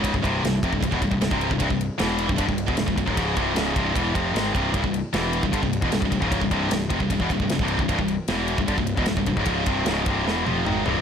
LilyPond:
<<
  \new Staff \with { instrumentName = "Distorted electric guitar" } { \clef bass \time 4/4 \tempo 4 = 152 <des, aes, des>16 <c, g,>16 <c, g, c>8 <c, g,>8 <f, c>16 <c, g,>16 <c, g,>16 <e, b,>16 <c, g,>16 <c, g,>16 <c, g,>16 <c, g, c>8 <c, g,>16 | <c, g,>16 <c, g,>8 r16 <e, b, e>8. <c, g,>16 <g, d>16 <c, g,>8 <e, b,>16 <c, g,>16 <c, g,>16 <c, g,>16 <des, aes,>16 | <des, aes, des>8 <c, g, c>8 <des, aes, des>8 <c, g, c>8 <e, b, e>8 <f, c f>8 <aes, ees aes>8 <c, g, c>8 | <c, g,>16 <c, g,>8 r16 <e, b, e>8. <c, g,>16 <g, d>16 <c, g,>8 <e, b,>16 <c, g,>16 <c, g,>16 <c, g,>16 <des, aes, des>16~ |
<des, aes, des>16 <c, g,>16 <c, g, c>8 <c, g,>8 <f, c>16 <c, g,>16 <c, g,>16 <e, b,>16 <c, g,>16 <c, g,>16 <c, g,>16 <c, g, c>8 <c, g,>16 | <c, g,>16 <c, g,>8 r16 <e, b, e>8. <c, g,>16 <g, d>16 <c, g,>8 <e, b,>16 <c, g,>16 <c, g,>16 <c, g,>16 <des, aes,>16 | <des, aes, des>8 <c, g, c>8 <des, aes, des>8 <c, g, c>8 <e, b, e>8 <f, c f>8 <aes, ees aes>8 <c, g, c>8 | }
  \new Staff \with { instrumentName = "Distorted electric guitar" } { \clef bass \time 4/4 <des, aes, des>16 <c, g,>16 <c, g, c>8 <c, g,>8 <f, c>16 <c, g,>16 <c, g,>16 <e, b,>16 <c, g,>16 <c, g,>16 <c, g,>16 <c, g, c>8 <c, g,>16 | <c, g,>16 <c, g,>8 r16 <e, b, e>8. <c, g,>16 <g, d>16 <c, g,>8 <e, b,>16 <c, g,>16 <c, g,>16 <c, g,>16 <des, aes,>16 | <des, aes, des>8 <c, g, c>8 <des, aes, des>8 <c, g, c>8 <e, b, e>8 <f, c f>8 <aes, ees aes>8 <c, g, c>8 | <c, g,>16 <c, g,>8 r16 <e, b, e>8. <c, g,>16 <g, d>16 <c, g,>8 <e, b,>16 <c, g,>16 <c, g,>16 <c, g,>16 <des, aes, des>16~ |
<des, aes, des>16 <c, g,>16 <c, g, c>8 <c, g,>8 <f, c>16 <c, g,>16 <c, g,>16 <e, b,>16 <c, g,>16 <c, g,>16 <c, g,>16 <c, g, c>8 <c, g,>16 | <c, g,>16 <c, g,>8 r16 <e, b, e>8. <c, g,>16 <g, d>16 <c, g,>8 <e, b,>16 <c, g,>16 <c, g,>16 <c, g,>16 <des, aes,>16 | <des, aes, des>8 <c, g, c>8 <des, aes, des>8 <c, g, c>8 <e, b, e>8 <f, c f>8 <aes, ees aes>8 <c, g, c>8 | }
  \new Staff \with { instrumentName = "Picked electric bass" } { \clef bass \time 4/4 des,,16 c,,16 c,,8 c,,8 f,,16 c,,16 c,,16 e,,16 c,,16 c,,16 c,,16 c,,8 c,,16 | c,,16 c,,8 r16 e,,8. c,,16 g,,16 c,,8 e,,16 c,,16 c,,16 c,,16 des,,16 | des,,8 c,,8 des,,8 c,,8 e,,8 f,,8 aes,,8 c,,8 | c,,16 c,,8 r16 e,,8. c,,16 g,,16 c,,8 e,,16 c,,16 c,,16 c,,16 des,,16~ |
des,,16 c,,16 c,,8 c,,8 f,,16 c,,16 c,,16 e,,16 c,,16 c,,16 c,,16 c,,8 c,,16 | c,,16 c,,8 r16 e,,8. c,,16 g,,16 c,,8 e,,16 c,,16 c,,16 c,,16 des,,16 | des,,8 c,,8 des,,8 c,,8 e,,8 f,,8 aes,,8 c,,8 | }
  \new DrumStaff \with { instrumentName = "Drums" } \drummode { \time 4/4 <bd cymr>16 bd16 <bd cymr>8 <cymr sn>8 <bd cymr>16 bd16 <bd cymr>16 bd16 <bd cymr>16 bd16 <cymr sn>16 bd16 cymr16 bd16 | <bd cymr>16 bd16 cymr8 <cymr sn>8 cymr16 bd16 <bd cymr>16 bd16 cymr16 bd16 <cymr sn>16 bd16 <bd cymr>16 bd16 | <bd cymr>8 <bd cymr>8 <cymr sn>8 <bd cymr>8 <bd cymr>8 <bd cymr>8 <cymr sn>8 <bd cymr>8 | <bd cymr>16 bd16 cymr8 <cymr sn>8 cymr16 bd16 <bd cymr>16 bd16 cymr16 bd16 <cymr sn>16 bd16 <bd cymr>16 bd16 |
<bd cymr>16 bd16 <bd cymr>8 <cymr sn>8 <bd cymr>16 bd16 <bd cymr>16 bd16 <bd cymr>16 bd16 <cymr sn>16 bd16 cymr16 bd16 | <bd cymr>16 bd16 cymr8 <cymr sn>8 cymr16 bd16 <bd cymr>16 bd16 cymr16 bd16 <cymr sn>16 bd16 <bd cymr>16 bd16 | <bd cymr>8 <bd cymr>8 <cymr sn>8 <bd cymr>8 sn8 tommh8 toml8 tomfh8 | }
>>